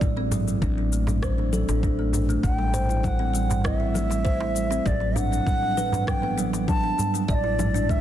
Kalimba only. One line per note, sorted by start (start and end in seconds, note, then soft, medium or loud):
0.02 0.16 F#3 medium
0.17 0.30 C4 medium
0.32 0.46 F#3 medium
0.48 0.61 F#3 medium
0.62 0.76 D4 medium
0.78 0.91 D4 medium
0.93 1.07 A3 medium
1.08 1.16 F#3 medium
1.23 1.37 C5 medium
1.38 1.51 D4 medium
1.53 1.68 A4 medium
1.69 1.82 D4 medium
1.83 1.97 D4 medium
1.99 2.13 A3 medium
2.13 2.22 D4 medium
2.29 2.42 A3 medium
2.43 2.58 A3 medium
2.59 2.67 G3 medium
2.74 2.88 C5 medium
2.89 3.03 E4 medium
3.03 3.19 G3 medium
3.19 3.33 C4 medium
3.34 3.49 G3 medium
3.50 3.64 G3 medium
3.64 3.79 E4 medium
3.80 3.93 E4 medium
3.94 4.09 A3 medium
4.10 4.19 G3 medium
4.25 4.39 C5 loud
4.41 4.54 E4 medium
4.55 4.70 G3 medium
4.71 4.84 C4 medium
4.86 5.00 F#3 loud
5.01 5.15 F#3 medium
5.16 5.30 D4 loud
5.32 5.45 D4 medium
5.47 5.61 G3 medium
5.62 5.71 F#3 medium
5.77 5.91 B4 loud
5.93 6.06 D4 medium
6.07 6.22 F#3 medium
6.23 6.36 B3 medium
6.38 6.52 F#3 loud
6.54 6.67 F#3 medium
6.68 6.82 D4 medium
6.84 6.97 D4 medium
6.98 7.12 G3 medium
7.14 7.22 F#3 medium
7.28 7.43 D5 loud
7.44 7.57 E4 medium
7.59 7.74 G#3 medium
7.74 7.88 D4 loud
7.89 8.01 G#3 loud